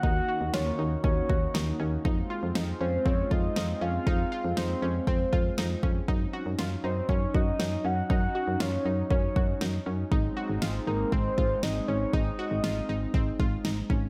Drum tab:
SD |--o---o-|--o---o-|--o---o-|--o---o-|
BD |o---oo--|o---oo--|o---oo-o|o---oo--|

SD |--o---o-|--o---o-|--o---o-|
BD |o---oo--|o---oo--|o---oo-o|